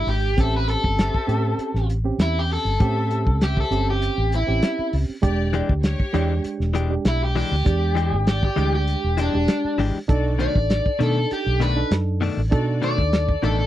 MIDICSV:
0, 0, Header, 1, 8, 480
1, 0, Start_track
1, 0, Tempo, 606673
1, 299, Time_signature, 4, 2, 24, 8
1, 10813, End_track
2, 0, Start_track
2, 0, Title_t, "String section"
2, 0, Program_c, 0, 48
2, 294, Note_on_c, 0, 67, 73
2, 294, Note_on_c, 0, 72, 73
2, 304, Note_on_c, 0, 76, 82
2, 537, Note_off_c, 0, 67, 0
2, 537, Note_off_c, 0, 72, 0
2, 542, Note_off_c, 0, 76, 0
2, 785, Note_on_c, 0, 67, 76
2, 786, Note_on_c, 0, 72, 71
2, 794, Note_on_c, 0, 76, 79
2, 1262, Note_off_c, 0, 67, 0
2, 1263, Note_off_c, 0, 72, 0
2, 1267, Note_off_c, 0, 76, 0
2, 2220, Note_on_c, 0, 67, 79
2, 2221, Note_on_c, 0, 72, 72
2, 2225, Note_on_c, 0, 76, 86
2, 2459, Note_off_c, 0, 67, 0
2, 2460, Note_off_c, 0, 72, 0
2, 2462, Note_off_c, 0, 76, 0
2, 2712, Note_on_c, 0, 76, 78
2, 2713, Note_on_c, 0, 67, 79
2, 2716, Note_on_c, 0, 72, 66
2, 3186, Note_off_c, 0, 67, 0
2, 3186, Note_off_c, 0, 76, 0
2, 3187, Note_off_c, 0, 72, 0
2, 4139, Note_on_c, 0, 56, 88
2, 4140, Note_on_c, 0, 67, 92
2, 4142, Note_on_c, 0, 74, 107
2, 4379, Note_off_c, 0, 56, 0
2, 4380, Note_off_c, 0, 67, 0
2, 4381, Note_off_c, 0, 74, 0
2, 4614, Note_on_c, 0, 67, 91
2, 4616, Note_on_c, 0, 73, 104
2, 5097, Note_off_c, 0, 67, 0
2, 5098, Note_off_c, 0, 73, 0
2, 6058, Note_on_c, 0, 74, 81
2, 6062, Note_on_c, 0, 67, 72
2, 6068, Note_on_c, 0, 56, 66
2, 6300, Note_off_c, 0, 74, 0
2, 6302, Note_off_c, 0, 67, 0
2, 6305, Note_off_c, 0, 56, 0
2, 6540, Note_on_c, 0, 67, 76
2, 6541, Note_on_c, 0, 74, 78
2, 7021, Note_off_c, 0, 67, 0
2, 7021, Note_off_c, 0, 74, 0
2, 7986, Note_on_c, 0, 69, 83
2, 7987, Note_on_c, 0, 66, 87
2, 7987, Note_on_c, 0, 74, 94
2, 8224, Note_off_c, 0, 69, 0
2, 8225, Note_off_c, 0, 66, 0
2, 8225, Note_off_c, 0, 74, 0
2, 8460, Note_on_c, 0, 69, 67
2, 8465, Note_on_c, 0, 74, 83
2, 8942, Note_off_c, 0, 69, 0
2, 8944, Note_off_c, 0, 74, 0
2, 9883, Note_on_c, 0, 66, 89
2, 9888, Note_on_c, 0, 69, 82
2, 9888, Note_on_c, 0, 74, 102
2, 10134, Note_off_c, 0, 66, 0
2, 10136, Note_off_c, 0, 69, 0
2, 10136, Note_off_c, 0, 74, 0
2, 10388, Note_on_c, 0, 69, 70
2, 10391, Note_on_c, 0, 74, 83
2, 10813, Note_off_c, 0, 69, 0
2, 10813, Note_off_c, 0, 74, 0
2, 10813, End_track
3, 0, Start_track
3, 0, Title_t, "Overdriven electric guitar"
3, 0, Program_c, 1, 29
3, 71, Note_on_c, 1, 67, 77
3, 298, Note_off_c, 1, 67, 0
3, 319, Note_on_c, 1, 69, 82
3, 431, Note_off_c, 1, 69, 0
3, 448, Note_on_c, 1, 71, 77
3, 547, Note_off_c, 1, 71, 0
3, 550, Note_on_c, 1, 69, 95
3, 1476, Note_off_c, 1, 69, 0
3, 1752, Note_on_c, 1, 64, 93
3, 1890, Note_off_c, 1, 64, 0
3, 1890, Note_on_c, 1, 67, 79
3, 1989, Note_off_c, 1, 67, 0
3, 1999, Note_on_c, 1, 69, 79
3, 2688, Note_off_c, 1, 69, 0
3, 2717, Note_on_c, 1, 67, 80
3, 2830, Note_off_c, 1, 67, 0
3, 2851, Note_on_c, 1, 69, 73
3, 3071, Note_off_c, 1, 69, 0
3, 3087, Note_on_c, 1, 67, 70
3, 3420, Note_off_c, 1, 67, 0
3, 3445, Note_on_c, 1, 64, 87
3, 3898, Note_off_c, 1, 64, 0
3, 5601, Note_on_c, 1, 64, 108
3, 5713, Note_off_c, 1, 64, 0
3, 5731, Note_on_c, 1, 67, 82
3, 5828, Note_off_c, 1, 67, 0
3, 5837, Note_on_c, 1, 67, 90
3, 6528, Note_off_c, 1, 67, 0
3, 6555, Note_on_c, 1, 67, 91
3, 6670, Note_off_c, 1, 67, 0
3, 6684, Note_on_c, 1, 67, 82
3, 6909, Note_off_c, 1, 67, 0
3, 6923, Note_on_c, 1, 67, 64
3, 7259, Note_off_c, 1, 67, 0
3, 7290, Note_on_c, 1, 62, 80
3, 7742, Note_off_c, 1, 62, 0
3, 8232, Note_on_c, 1, 74, 100
3, 8693, Note_off_c, 1, 74, 0
3, 8726, Note_on_c, 1, 69, 76
3, 8948, Note_off_c, 1, 69, 0
3, 8963, Note_on_c, 1, 67, 83
3, 9186, Note_off_c, 1, 67, 0
3, 9196, Note_on_c, 1, 71, 92
3, 9423, Note_off_c, 1, 71, 0
3, 10158, Note_on_c, 1, 74, 84
3, 10617, Note_off_c, 1, 74, 0
3, 10635, Note_on_c, 1, 69, 82
3, 10813, Note_off_c, 1, 69, 0
3, 10813, End_track
4, 0, Start_track
4, 0, Title_t, "Reed electric piano"
4, 0, Program_c, 2, 4
4, 0, Note_on_c, 2, 56, 70
4, 0, Note_on_c, 2, 62, 64
4, 0, Note_on_c, 2, 67, 73
4, 232, Note_off_c, 2, 56, 0
4, 234, Note_off_c, 2, 62, 0
4, 237, Note_off_c, 2, 67, 0
4, 293, Note_on_c, 2, 60, 79
4, 300, Note_on_c, 2, 61, 70
4, 303, Note_on_c, 2, 67, 86
4, 939, Note_off_c, 2, 60, 0
4, 942, Note_off_c, 2, 61, 0
4, 944, Note_off_c, 2, 67, 0
4, 1005, Note_on_c, 2, 60, 73
4, 1012, Note_on_c, 2, 61, 70
4, 1017, Note_on_c, 2, 67, 88
4, 1547, Note_off_c, 2, 60, 0
4, 1550, Note_off_c, 2, 61, 0
4, 1553, Note_off_c, 2, 67, 0
4, 1616, Note_on_c, 2, 60, 71
4, 1622, Note_on_c, 2, 61, 67
4, 1625, Note_on_c, 2, 67, 76
4, 2150, Note_off_c, 2, 60, 0
4, 2153, Note_off_c, 2, 61, 0
4, 2155, Note_off_c, 2, 67, 0
4, 2214, Note_on_c, 2, 60, 78
4, 2219, Note_on_c, 2, 61, 76
4, 2225, Note_on_c, 2, 67, 90
4, 2859, Note_off_c, 2, 60, 0
4, 2862, Note_off_c, 2, 61, 0
4, 2865, Note_off_c, 2, 67, 0
4, 2934, Note_on_c, 2, 60, 78
4, 2935, Note_on_c, 2, 61, 72
4, 2942, Note_on_c, 2, 67, 84
4, 3472, Note_off_c, 2, 60, 0
4, 3472, Note_off_c, 2, 61, 0
4, 3476, Note_off_c, 2, 67, 0
4, 3536, Note_on_c, 2, 60, 74
4, 3541, Note_on_c, 2, 61, 67
4, 3547, Note_on_c, 2, 67, 80
4, 4070, Note_off_c, 2, 60, 0
4, 4073, Note_off_c, 2, 61, 0
4, 4076, Note_off_c, 2, 67, 0
4, 4129, Note_on_c, 2, 56, 93
4, 4133, Note_on_c, 2, 62, 90
4, 4136, Note_on_c, 2, 67, 110
4, 4777, Note_off_c, 2, 56, 0
4, 4779, Note_off_c, 2, 62, 0
4, 4781, Note_off_c, 2, 67, 0
4, 4851, Note_on_c, 2, 56, 89
4, 4856, Note_on_c, 2, 62, 84
4, 4860, Note_on_c, 2, 67, 104
4, 5391, Note_off_c, 2, 56, 0
4, 5393, Note_off_c, 2, 62, 0
4, 5395, Note_off_c, 2, 67, 0
4, 5456, Note_on_c, 2, 56, 72
4, 5461, Note_on_c, 2, 62, 71
4, 5467, Note_on_c, 2, 67, 80
4, 5991, Note_off_c, 2, 56, 0
4, 5994, Note_off_c, 2, 62, 0
4, 5996, Note_off_c, 2, 67, 0
4, 6050, Note_on_c, 2, 56, 81
4, 6057, Note_on_c, 2, 62, 71
4, 6062, Note_on_c, 2, 67, 87
4, 6699, Note_off_c, 2, 56, 0
4, 6702, Note_off_c, 2, 62, 0
4, 6704, Note_off_c, 2, 67, 0
4, 6773, Note_on_c, 2, 56, 79
4, 6779, Note_on_c, 2, 62, 71
4, 6784, Note_on_c, 2, 67, 85
4, 7312, Note_off_c, 2, 56, 0
4, 7315, Note_off_c, 2, 62, 0
4, 7318, Note_off_c, 2, 67, 0
4, 7384, Note_on_c, 2, 56, 74
4, 7389, Note_on_c, 2, 62, 64
4, 7395, Note_on_c, 2, 67, 77
4, 7916, Note_off_c, 2, 56, 0
4, 7919, Note_off_c, 2, 62, 0
4, 7921, Note_off_c, 2, 67, 0
4, 7977, Note_on_c, 2, 62, 96
4, 7981, Note_on_c, 2, 63, 84
4, 7985, Note_on_c, 2, 69, 102
4, 8623, Note_off_c, 2, 62, 0
4, 8625, Note_off_c, 2, 63, 0
4, 8627, Note_off_c, 2, 69, 0
4, 8698, Note_on_c, 2, 62, 75
4, 8699, Note_on_c, 2, 63, 74
4, 8707, Note_on_c, 2, 69, 79
4, 9236, Note_off_c, 2, 62, 0
4, 9236, Note_off_c, 2, 63, 0
4, 9240, Note_off_c, 2, 69, 0
4, 9304, Note_on_c, 2, 62, 70
4, 9309, Note_on_c, 2, 63, 64
4, 9313, Note_on_c, 2, 69, 81
4, 9837, Note_off_c, 2, 62, 0
4, 9839, Note_off_c, 2, 63, 0
4, 9841, Note_off_c, 2, 69, 0
4, 9900, Note_on_c, 2, 62, 102
4, 9907, Note_on_c, 2, 63, 82
4, 9910, Note_on_c, 2, 69, 109
4, 10545, Note_off_c, 2, 62, 0
4, 10549, Note_off_c, 2, 63, 0
4, 10550, Note_off_c, 2, 69, 0
4, 10620, Note_on_c, 2, 62, 76
4, 10627, Note_on_c, 2, 63, 72
4, 10634, Note_on_c, 2, 69, 82
4, 10813, Note_off_c, 2, 62, 0
4, 10813, Note_off_c, 2, 63, 0
4, 10813, Note_off_c, 2, 69, 0
4, 10813, End_track
5, 0, Start_track
5, 0, Title_t, "Clean electric guitar"
5, 0, Program_c, 3, 27
5, 4376, Note_on_c, 3, 52, 88
5, 4382, Note_on_c, 3, 56, 97
5, 4386, Note_on_c, 3, 62, 89
5, 4391, Note_on_c, 3, 67, 108
5, 4527, Note_off_c, 3, 52, 0
5, 4530, Note_off_c, 3, 56, 0
5, 4532, Note_off_c, 3, 62, 0
5, 4534, Note_off_c, 3, 67, 0
5, 4857, Note_on_c, 3, 52, 92
5, 4862, Note_on_c, 3, 56, 86
5, 4868, Note_on_c, 3, 62, 96
5, 4872, Note_on_c, 3, 67, 98
5, 5007, Note_off_c, 3, 52, 0
5, 5010, Note_off_c, 3, 56, 0
5, 5012, Note_off_c, 3, 62, 0
5, 5014, Note_off_c, 3, 67, 0
5, 5330, Note_on_c, 3, 52, 87
5, 5338, Note_on_c, 3, 56, 87
5, 5339, Note_on_c, 3, 62, 93
5, 5347, Note_on_c, 3, 67, 97
5, 5484, Note_off_c, 3, 52, 0
5, 5488, Note_off_c, 3, 56, 0
5, 5488, Note_off_c, 3, 62, 0
5, 5492, Note_off_c, 3, 67, 0
5, 5819, Note_on_c, 3, 52, 87
5, 5822, Note_on_c, 3, 56, 79
5, 5827, Note_on_c, 3, 62, 95
5, 5834, Note_on_c, 3, 67, 84
5, 5968, Note_off_c, 3, 52, 0
5, 5970, Note_off_c, 3, 56, 0
5, 5972, Note_off_c, 3, 62, 0
5, 5976, Note_off_c, 3, 67, 0
5, 6291, Note_on_c, 3, 52, 81
5, 6299, Note_on_c, 3, 56, 82
5, 6301, Note_on_c, 3, 62, 84
5, 6306, Note_on_c, 3, 67, 90
5, 6445, Note_off_c, 3, 52, 0
5, 6449, Note_off_c, 3, 56, 0
5, 6450, Note_off_c, 3, 62, 0
5, 6452, Note_off_c, 3, 67, 0
5, 6774, Note_on_c, 3, 52, 86
5, 6779, Note_on_c, 3, 56, 85
5, 6785, Note_on_c, 3, 62, 80
5, 6790, Note_on_c, 3, 67, 83
5, 6926, Note_off_c, 3, 52, 0
5, 6929, Note_off_c, 3, 56, 0
5, 6932, Note_off_c, 3, 62, 0
5, 6934, Note_off_c, 3, 67, 0
5, 7258, Note_on_c, 3, 52, 72
5, 7263, Note_on_c, 3, 56, 76
5, 7270, Note_on_c, 3, 62, 75
5, 7275, Note_on_c, 3, 67, 87
5, 7408, Note_off_c, 3, 52, 0
5, 7411, Note_off_c, 3, 56, 0
5, 7415, Note_off_c, 3, 62, 0
5, 7417, Note_off_c, 3, 67, 0
5, 7739, Note_on_c, 3, 52, 80
5, 7746, Note_on_c, 3, 56, 81
5, 7751, Note_on_c, 3, 62, 88
5, 7755, Note_on_c, 3, 67, 91
5, 7889, Note_off_c, 3, 52, 0
5, 7893, Note_off_c, 3, 56, 0
5, 7895, Note_off_c, 3, 62, 0
5, 7897, Note_off_c, 3, 67, 0
5, 8218, Note_on_c, 3, 47, 79
5, 8225, Note_on_c, 3, 51, 84
5, 8232, Note_on_c, 3, 57, 76
5, 8234, Note_on_c, 3, 62, 82
5, 8369, Note_off_c, 3, 47, 0
5, 8373, Note_off_c, 3, 51, 0
5, 8376, Note_off_c, 3, 57, 0
5, 8377, Note_off_c, 3, 62, 0
5, 8695, Note_on_c, 3, 47, 85
5, 8703, Note_on_c, 3, 51, 85
5, 8704, Note_on_c, 3, 57, 90
5, 8709, Note_on_c, 3, 62, 84
5, 8848, Note_off_c, 3, 47, 0
5, 8851, Note_off_c, 3, 51, 0
5, 8852, Note_off_c, 3, 57, 0
5, 8855, Note_off_c, 3, 62, 0
5, 9177, Note_on_c, 3, 47, 77
5, 9184, Note_on_c, 3, 51, 83
5, 9192, Note_on_c, 3, 57, 92
5, 9195, Note_on_c, 3, 62, 88
5, 9329, Note_off_c, 3, 47, 0
5, 9332, Note_off_c, 3, 51, 0
5, 9336, Note_off_c, 3, 57, 0
5, 9338, Note_off_c, 3, 62, 0
5, 9659, Note_on_c, 3, 47, 98
5, 9664, Note_on_c, 3, 51, 93
5, 9668, Note_on_c, 3, 57, 96
5, 9676, Note_on_c, 3, 62, 102
5, 9810, Note_off_c, 3, 47, 0
5, 9812, Note_off_c, 3, 51, 0
5, 9815, Note_off_c, 3, 57, 0
5, 9819, Note_off_c, 3, 62, 0
5, 10140, Note_on_c, 3, 47, 84
5, 10147, Note_on_c, 3, 51, 76
5, 10155, Note_on_c, 3, 57, 94
5, 10158, Note_on_c, 3, 62, 94
5, 10291, Note_off_c, 3, 47, 0
5, 10294, Note_off_c, 3, 51, 0
5, 10298, Note_off_c, 3, 57, 0
5, 10300, Note_off_c, 3, 62, 0
5, 10622, Note_on_c, 3, 47, 84
5, 10628, Note_on_c, 3, 51, 83
5, 10631, Note_on_c, 3, 57, 81
5, 10637, Note_on_c, 3, 62, 89
5, 10772, Note_off_c, 3, 47, 0
5, 10775, Note_off_c, 3, 51, 0
5, 10776, Note_off_c, 3, 57, 0
5, 10780, Note_off_c, 3, 62, 0
5, 10813, End_track
6, 0, Start_track
6, 0, Title_t, "Fingered electric bass"
6, 0, Program_c, 4, 33
6, 53, Note_on_c, 4, 32, 83
6, 272, Note_off_c, 4, 32, 0
6, 296, Note_on_c, 4, 33, 112
6, 592, Note_off_c, 4, 33, 0
6, 667, Note_on_c, 4, 31, 96
6, 859, Note_off_c, 4, 31, 0
6, 1013, Note_on_c, 4, 45, 95
6, 1209, Note_off_c, 4, 45, 0
6, 1379, Note_on_c, 4, 33, 86
6, 1666, Note_off_c, 4, 33, 0
6, 1729, Note_on_c, 4, 40, 82
6, 2027, Note_off_c, 4, 40, 0
6, 2095, Note_on_c, 4, 31, 82
6, 2191, Note_off_c, 4, 31, 0
6, 2218, Note_on_c, 4, 45, 104
6, 2585, Note_on_c, 4, 37, 84
6, 2597, Note_off_c, 4, 45, 0
6, 2870, Note_off_c, 4, 37, 0
6, 2932, Note_on_c, 4, 31, 90
6, 3229, Note_off_c, 4, 31, 0
6, 3305, Note_on_c, 4, 33, 88
6, 3498, Note_off_c, 4, 33, 0
6, 3547, Note_on_c, 4, 33, 83
6, 3638, Note_off_c, 4, 33, 0
6, 3903, Note_on_c, 4, 37, 89
6, 4003, Note_off_c, 4, 37, 0
6, 4135, Note_on_c, 4, 28, 115
6, 4431, Note_off_c, 4, 28, 0
6, 4504, Note_on_c, 4, 38, 97
6, 4698, Note_off_c, 4, 38, 0
6, 4858, Note_on_c, 4, 40, 100
6, 5052, Note_off_c, 4, 40, 0
6, 5220, Note_on_c, 4, 28, 91
6, 5508, Note_off_c, 4, 28, 0
6, 5577, Note_on_c, 4, 35, 83
6, 5873, Note_off_c, 4, 35, 0
6, 5948, Note_on_c, 4, 38, 85
6, 6039, Note_off_c, 4, 38, 0
6, 6063, Note_on_c, 4, 40, 106
6, 6424, Note_on_c, 4, 32, 90
6, 6436, Note_off_c, 4, 40, 0
6, 6711, Note_off_c, 4, 32, 0
6, 6782, Note_on_c, 4, 38, 90
6, 7077, Note_off_c, 4, 38, 0
6, 7154, Note_on_c, 4, 28, 84
6, 7345, Note_off_c, 4, 28, 0
6, 7393, Note_on_c, 4, 28, 84
6, 7483, Note_off_c, 4, 28, 0
6, 7738, Note_on_c, 4, 32, 87
6, 7841, Note_off_c, 4, 32, 0
6, 7981, Note_on_c, 4, 35, 108
6, 8276, Note_off_c, 4, 35, 0
6, 8350, Note_on_c, 4, 33, 91
6, 8543, Note_off_c, 4, 33, 0
6, 8705, Note_on_c, 4, 47, 103
6, 8898, Note_off_c, 4, 47, 0
6, 9071, Note_on_c, 4, 35, 87
6, 9356, Note_off_c, 4, 35, 0
6, 9422, Note_on_c, 4, 42, 91
6, 9717, Note_off_c, 4, 42, 0
6, 9789, Note_on_c, 4, 33, 81
6, 9881, Note_off_c, 4, 33, 0
6, 9903, Note_on_c, 4, 47, 96
6, 10268, Note_on_c, 4, 39, 90
6, 10280, Note_off_c, 4, 47, 0
6, 10554, Note_off_c, 4, 39, 0
6, 10623, Note_on_c, 4, 33, 94
6, 10813, Note_off_c, 4, 33, 0
6, 10813, End_track
7, 0, Start_track
7, 0, Title_t, "Muted fingered electric bass strokes"
7, 1251, Note_on_c, 9, 29, 33
7, 1331, Note_off_c, 9, 29, 0
7, 3789, Note_on_c, 9, 29, 39
7, 3868, Note_off_c, 9, 29, 0
7, 4029, Note_on_c, 9, 29, 36
7, 4108, Note_off_c, 9, 29, 0
7, 5101, Note_on_c, 9, 29, 35
7, 5180, Note_off_c, 9, 29, 0
7, 7631, Note_on_c, 9, 29, 37
7, 7710, Note_off_c, 9, 29, 0
7, 8951, Note_on_c, 9, 29, 37
7, 9030, Note_off_c, 9, 29, 0
7, 10813, End_track
8, 0, Start_track
8, 0, Title_t, "Drums"
8, 59, Note_on_c, 9, 46, 81
8, 138, Note_off_c, 9, 46, 0
8, 299, Note_on_c, 9, 36, 105
8, 299, Note_on_c, 9, 42, 90
8, 378, Note_off_c, 9, 36, 0
8, 378, Note_off_c, 9, 42, 0
8, 539, Note_on_c, 9, 42, 64
8, 618, Note_off_c, 9, 42, 0
8, 665, Note_on_c, 9, 36, 73
8, 744, Note_off_c, 9, 36, 0
8, 780, Note_on_c, 9, 42, 86
8, 784, Note_on_c, 9, 38, 110
8, 859, Note_off_c, 9, 42, 0
8, 863, Note_off_c, 9, 38, 0
8, 905, Note_on_c, 9, 36, 76
8, 984, Note_off_c, 9, 36, 0
8, 1020, Note_on_c, 9, 42, 60
8, 1100, Note_off_c, 9, 42, 0
8, 1258, Note_on_c, 9, 42, 76
8, 1337, Note_off_c, 9, 42, 0
8, 1388, Note_on_c, 9, 38, 35
8, 1468, Note_off_c, 9, 38, 0
8, 1500, Note_on_c, 9, 42, 63
8, 1579, Note_off_c, 9, 42, 0
8, 1735, Note_on_c, 9, 42, 77
8, 1739, Note_on_c, 9, 38, 104
8, 1814, Note_off_c, 9, 42, 0
8, 1818, Note_off_c, 9, 38, 0
8, 1981, Note_on_c, 9, 46, 81
8, 2060, Note_off_c, 9, 46, 0
8, 2216, Note_on_c, 9, 42, 82
8, 2218, Note_on_c, 9, 36, 115
8, 2295, Note_off_c, 9, 42, 0
8, 2297, Note_off_c, 9, 36, 0
8, 2458, Note_on_c, 9, 42, 62
8, 2537, Note_off_c, 9, 42, 0
8, 2584, Note_on_c, 9, 36, 76
8, 2663, Note_off_c, 9, 36, 0
8, 2699, Note_on_c, 9, 42, 70
8, 2703, Note_on_c, 9, 38, 100
8, 2778, Note_off_c, 9, 42, 0
8, 2782, Note_off_c, 9, 38, 0
8, 2825, Note_on_c, 9, 36, 88
8, 2904, Note_off_c, 9, 36, 0
8, 2940, Note_on_c, 9, 42, 59
8, 3020, Note_off_c, 9, 42, 0
8, 3180, Note_on_c, 9, 42, 79
8, 3259, Note_off_c, 9, 42, 0
8, 3421, Note_on_c, 9, 42, 65
8, 3500, Note_off_c, 9, 42, 0
8, 3658, Note_on_c, 9, 42, 83
8, 3662, Note_on_c, 9, 38, 105
8, 3737, Note_off_c, 9, 42, 0
8, 3741, Note_off_c, 9, 38, 0
8, 3900, Note_on_c, 9, 46, 84
8, 3979, Note_off_c, 9, 46, 0
8, 4137, Note_on_c, 9, 42, 86
8, 4138, Note_on_c, 9, 36, 108
8, 4216, Note_off_c, 9, 42, 0
8, 4217, Note_off_c, 9, 36, 0
8, 4378, Note_on_c, 9, 42, 69
8, 4458, Note_off_c, 9, 42, 0
8, 4504, Note_on_c, 9, 36, 80
8, 4583, Note_off_c, 9, 36, 0
8, 4615, Note_on_c, 9, 42, 78
8, 4619, Note_on_c, 9, 38, 101
8, 4694, Note_off_c, 9, 42, 0
8, 4698, Note_off_c, 9, 38, 0
8, 4744, Note_on_c, 9, 36, 82
8, 4823, Note_off_c, 9, 36, 0
8, 4859, Note_on_c, 9, 42, 64
8, 4938, Note_off_c, 9, 42, 0
8, 5097, Note_on_c, 9, 42, 84
8, 5176, Note_off_c, 9, 42, 0
8, 5228, Note_on_c, 9, 38, 34
8, 5308, Note_off_c, 9, 38, 0
8, 5337, Note_on_c, 9, 42, 68
8, 5416, Note_off_c, 9, 42, 0
8, 5577, Note_on_c, 9, 42, 74
8, 5581, Note_on_c, 9, 38, 104
8, 5656, Note_off_c, 9, 42, 0
8, 5660, Note_off_c, 9, 38, 0
8, 5818, Note_on_c, 9, 46, 82
8, 5897, Note_off_c, 9, 46, 0
8, 6058, Note_on_c, 9, 42, 80
8, 6062, Note_on_c, 9, 36, 104
8, 6137, Note_off_c, 9, 42, 0
8, 6141, Note_off_c, 9, 36, 0
8, 6304, Note_on_c, 9, 42, 62
8, 6308, Note_on_c, 9, 38, 33
8, 6383, Note_off_c, 9, 42, 0
8, 6387, Note_off_c, 9, 38, 0
8, 6542, Note_on_c, 9, 42, 75
8, 6546, Note_on_c, 9, 38, 102
8, 6621, Note_off_c, 9, 42, 0
8, 6625, Note_off_c, 9, 38, 0
8, 6668, Note_on_c, 9, 36, 86
8, 6747, Note_off_c, 9, 36, 0
8, 6780, Note_on_c, 9, 42, 57
8, 6859, Note_off_c, 9, 42, 0
8, 7022, Note_on_c, 9, 42, 77
8, 7101, Note_off_c, 9, 42, 0
8, 7259, Note_on_c, 9, 42, 67
8, 7339, Note_off_c, 9, 42, 0
8, 7500, Note_on_c, 9, 42, 78
8, 7504, Note_on_c, 9, 38, 100
8, 7579, Note_off_c, 9, 42, 0
8, 7583, Note_off_c, 9, 38, 0
8, 7745, Note_on_c, 9, 46, 78
8, 7749, Note_on_c, 9, 38, 36
8, 7824, Note_off_c, 9, 46, 0
8, 7828, Note_off_c, 9, 38, 0
8, 7983, Note_on_c, 9, 42, 83
8, 7984, Note_on_c, 9, 36, 104
8, 8062, Note_off_c, 9, 42, 0
8, 8063, Note_off_c, 9, 36, 0
8, 8226, Note_on_c, 9, 42, 68
8, 8305, Note_off_c, 9, 42, 0
8, 8351, Note_on_c, 9, 36, 80
8, 8430, Note_off_c, 9, 36, 0
8, 8466, Note_on_c, 9, 42, 84
8, 8470, Note_on_c, 9, 38, 98
8, 8545, Note_off_c, 9, 42, 0
8, 8549, Note_off_c, 9, 38, 0
8, 8591, Note_on_c, 9, 36, 81
8, 8670, Note_off_c, 9, 36, 0
8, 8708, Note_on_c, 9, 42, 62
8, 8787, Note_off_c, 9, 42, 0
8, 8948, Note_on_c, 9, 42, 75
8, 9027, Note_off_c, 9, 42, 0
8, 9186, Note_on_c, 9, 42, 73
8, 9266, Note_off_c, 9, 42, 0
8, 9425, Note_on_c, 9, 42, 84
8, 9429, Note_on_c, 9, 38, 107
8, 9504, Note_off_c, 9, 42, 0
8, 9508, Note_off_c, 9, 38, 0
8, 9668, Note_on_c, 9, 46, 75
8, 9747, Note_off_c, 9, 46, 0
8, 9906, Note_on_c, 9, 36, 115
8, 9909, Note_on_c, 9, 42, 83
8, 9986, Note_off_c, 9, 36, 0
8, 9988, Note_off_c, 9, 42, 0
8, 10147, Note_on_c, 9, 42, 61
8, 10226, Note_off_c, 9, 42, 0
8, 10272, Note_on_c, 9, 36, 76
8, 10351, Note_off_c, 9, 36, 0
8, 10386, Note_on_c, 9, 42, 75
8, 10390, Note_on_c, 9, 38, 112
8, 10465, Note_off_c, 9, 42, 0
8, 10469, Note_off_c, 9, 38, 0
8, 10512, Note_on_c, 9, 36, 87
8, 10591, Note_off_c, 9, 36, 0
8, 10627, Note_on_c, 9, 42, 56
8, 10631, Note_on_c, 9, 38, 33
8, 10707, Note_off_c, 9, 42, 0
8, 10710, Note_off_c, 9, 38, 0
8, 10813, End_track
0, 0, End_of_file